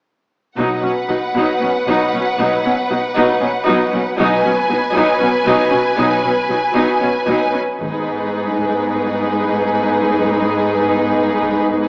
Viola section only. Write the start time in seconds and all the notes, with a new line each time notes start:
0.57 F#3 D#4
0.83 F#3 C#4
1.09 F#3 D#4
1.36 F#3 D#4
1.61 F#3 C#4
1.88 F#3 D#4
2.14 F#3 C#4
2.39 F#3 D#4
2.65 F#3 C#4
2.91 F#3 D#4
3.16 F#3 D#4
3.41 F#3 C#4
3.66 F#3 D#4
3.92 F#3 C#4
4.18 F#3 D#4
4.44 F#3 C#4
4.69 F#3 D#4
4.94 F#3 D#4
5.20 F#3 C#4
5.45 F#3 D#4
5.70 F#3 C#4
5.97 F#3 D#4
6.23 F#3 C#4
6.50 F#3 D#4
6.75 F#3 D#4
7.01 F#3 C#4
7.26 F#3 D#4
7.52 F#3 C#4
7.80 D#4